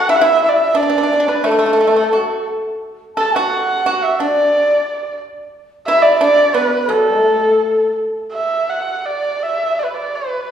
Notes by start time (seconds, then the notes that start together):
Already playing: F#5
0.08 E4 E5
0.16 F#5
0.21 E4 E5
0.43 E5
0.49 D5
0.56 E5
0.75 D4 D5
0.83 D4
0.90 D4
0.98 D4
1.03 D4
1.13 D4
1.20 D4
1.28 D4 B4
1.44 A3 A4
1.51 A3
1.59 A3
1.66 A3
1.73 A3
1.81 A3
1.87 A3
1.96 A3
2.13 F#4
3.16 A4 A5
3.35 F#4 F#5
3.86 F#4 F#5
4.03 E5
4.19 D4 D5
5.87 E4 E5
6.02 D5
6.19 D4 D5
6.54 B3 B4
6.87 F#3 A4
7.21 A3
8.33 E5
8.70 F#5
9.06 D5
9.43 E5
9.79 D5
9.84 B4
9.94 D5
10.15 B4